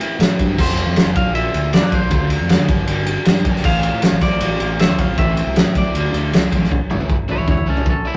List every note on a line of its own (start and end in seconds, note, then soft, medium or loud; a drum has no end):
0.00 0.20 A2 medium
0.00 0.18 E3 medium
0.00 0.21 A3 medium
0.00 0.20 C4 medium
0.00 0.21 E4 medium
0.00 ride medium
0.19 0.37 A2 medium
0.19 0.57 E3 medium
0.19 0.40 A3 medium
0.19 0.39 C4 medium
0.19 0.38 E4 medium
0.19 snare loud
0.19 ride loud
0.39 0.57 G2 medium
0.39 0.58 A3 medium
0.39 0.58 C4 medium
0.39 0.57 E4 medium
0.39 kick medium
0.39 ride medium
0.58 0.82 F1 loud
0.58 1.15 F2 loud
0.58 1.15 C3 medium
0.58 0.97 F3 loud
0.58 0.97 A3 medium
0.58 0.97 C4 loud
0.58 0.99 F4 loud
0.58 1.13 C5 loud
0.58 kick loud
0.58 crash loud
0.69 snare soft
0.77 ride medium
0.86 0.95 F2 loud
0.96 1.18 F3 medium
0.96 1.15 A3 medium
0.96 1.16 C4 medium
0.96 1.15 F4 medium
0.96 snare loud
0.96 ride loud
1.05 1.14 F1 loud
1.16 1.48 A#1 loud
1.16 1.34 A#2 medium
1.16 1.34 D3 medium
1.16 1.35 A#3 medium
1.16 1.36 D4 medium
1.16 1.37 F4 medium
1.16 1.35 F5 loud
1.16 kick loud
1.16 ride medium
1.35 1.73 A#2 medium
1.35 1.72 D3 medium
1.35 1.55 A#3 medium
1.35 1.54 D4 medium
1.35 1.53 F4 loud
1.35 1.74 E5 loud
1.35 ride medium
1.54 1.83 D2 medium
1.54 1.73 A#3 medium
1.54 1.74 D4 medium
1.54 1.76 F4 medium
1.54 ride medium
1.73 2.09 D3 medium
1.73 1.93 A#3 medium
1.73 1.92 D4 medium
1.73 1.91 F4 medium
1.73 1.93 D5 medium
1.73 snare loud
1.73 ride loud
1.83 1.99 G2 medium
1.91 2.11 A#3 medium
1.91 2.11 D4 medium
1.91 2.12 F4 medium
1.91 2.29 C5 medium
1.91 kick medium
1.91 ride medium
2.02 2.11 A#1 medium
2.10 2.35 D2 loud
2.10 2.48 D3 medium
2.10 2.49 A3 medium
2.10 2.50 D4 loud
2.10 2.52 F4 loud
2.10 kick loud
2.10 ride medium
2.30 ride medium
2.40 2.56 F2 medium
2.49 2.68 D3 medium
2.49 2.68 A3 medium
2.49 2.68 D4 medium
2.49 2.68 F4 medium
2.49 snare loud
2.49 ride loud
2.59 2.67 D3 medium
2.68 3.16 G1 loud
2.68 2.86 G2 medium
2.68 2.87 D3 medium
2.68 2.87 G3 medium
2.68 2.88 A#3 medium
2.68 2.88 D4 medium
2.68 2.89 G4 medium
2.68 kick loud
2.68 ride medium
2.87 3.26 G2 medium
2.87 3.26 D3 medium
2.87 3.08 G3 medium
2.87 3.07 A#3 medium
2.87 3.07 D4 medium
2.87 3.05 G4 loud
2.87 ride loud
3.06 3.25 G3 medium
3.06 3.26 A#3 medium
3.06 3.27 D4 medium
3.06 3.28 G4 medium
3.06 ride medium
3.25 3.46 G2 medium
3.25 3.46 G3 medium
3.25 3.46 A#3 medium
3.25 3.45 D4 medium
3.25 3.44 G4 medium
3.25 snare loud
3.25 ride loud
3.45 3.53 G1 medium
3.45 3.64 G3 medium
3.45 3.64 A#3 medium
3.45 3.64 D4 medium
3.45 3.63 G4 medium
3.45 kick medium
3.45 ride medium
3.55 snare soft
3.63 3.88 A1 loud
3.63 4.21 A2 loud
3.63 4.00 F3 loud
3.63 4.02 A3 loud
3.63 4.03 C4 loud
3.63 4.03 F4 loud
3.63 4.18 F5 loud
3.63 kick loud
3.63 crash loud
3.83 ride medium
3.93 4.01 A2 loud
4.02 4.40 F3 medium
4.02 4.41 A3 medium
4.02 4.41 C4 medium
4.02 4.41 F4 medium
4.02 snare loud
4.02 ride loud
4.12 4.28 A1 medium
4.21 4.80 D5 loud
4.21 kick medium
4.21 snare soft
4.21 ride medium
4.40 4.57 A1 medium
4.40 4.79 A2 medium
4.40 4.78 F3 loud
4.40 4.62 A3 medium
4.40 4.60 C4 medium
4.40 4.59 F4 loud
4.40 ride loud
4.60 4.89 A1 medium
4.60 4.79 A3 medium
4.60 4.79 C4 medium
4.60 4.80 F4 medium
4.60 ride medium
4.79 5.16 F3 medium
4.79 5.00 A3 medium
4.79 4.98 C4 medium
4.79 4.97 F4 medium
4.79 4.99 E5 medium
4.79 snare loud
4.79 ride loud
4.89 5.05 D2 medium
4.98 5.18 A3 medium
4.98 5.17 C4 medium
4.98 5.16 F4 medium
4.98 5.18 F5 loud
4.98 kick medium
4.98 ride medium
5.09 5.17 A1 medium
5.17 5.42 A1 loud
5.17 5.75 A2 medium
5.17 5.53 E3 loud
5.17 5.55 A3 medium
5.17 5.55 C4 loud
5.17 5.56 E4 loud
5.17 5.77 E5 loud
5.17 kick loud
5.17 ride medium
5.37 ride medium
5.47 5.63 C2 loud
5.55 5.93 E3 medium
5.55 5.93 A3 medium
5.55 5.94 C4 medium
5.55 5.94 E4 medium
5.55 snare loud
5.55 ride loud
5.66 5.82 A2 medium
5.75 6.49 D5 medium
5.75 kick medium
5.75 ride medium
5.93 6.10 D2 loud
5.93 6.31 D3 medium
5.93 6.14 A3 medium
5.93 6.13 D4 loud
5.93 6.11 F4 loud
5.93 ride loud
6.12 6.31 D2 medium
6.12 6.32 A3 medium
6.12 6.33 D4 medium
6.12 6.33 F4 medium
6.12 ride medium
6.32 6.50 C2 medium
6.32 6.69 D3 medium
6.32 6.53 A3 medium
6.32 6.52 D4 medium
6.32 6.50 F4 medium
6.32 snare loud
6.32 ride loud
6.51 6.69 A1 medium
6.51 6.71 A3 medium
6.51 6.70 D4 medium
6.51 6.70 F4 medium
6.51 kick medium
6.51 ride medium
6.63 snare soft
6.71 6.79 A1 medium
6.71 kick medium
6.71 floor tom medium
6.90 7.30 G1 medium
6.90 7.16 E3 medium
6.90 7.16 G3 medium
6.90 7.15 C#4 medium
6.90 7.15 E4 medium
6.90 floor tom medium
6.90 mid tom medium
7.01 floor tom medium
7.10 kick loud
7.28 7.54 E3 medium
7.28 7.54 G3 medium
7.28 7.54 C#4 medium
7.28 7.53 E4 medium
7.28 7.48 E4 medium
7.28 7.49 C#5 medium
7.28 floor tom medium
7.39 7.47 A1 medium
7.48 7.64 E2 medium
7.48 7.67 E4 medium
7.48 7.68 C#5 medium
7.48 kick loud
7.48 floor tom medium
7.57 floor tom medium
7.67 7.75 C#2 medium
7.67 7.92 E3 medium
7.67 7.92 G3 medium
7.67 7.92 C#4 medium
7.67 7.86 C#4 medium
7.67 7.92 E4 medium
7.67 7.87 A4 medium
7.77 floor tom medium
7.86 8.02 A#1 medium
7.86 8.06 C#4 medium
7.86 kick loud
7.90 8.07 A4 medium
8.05 8.17 E3 medium
8.05 8.17 G3 medium
8.05 8.17 C#4 medium
8.05 8.17 E4 medium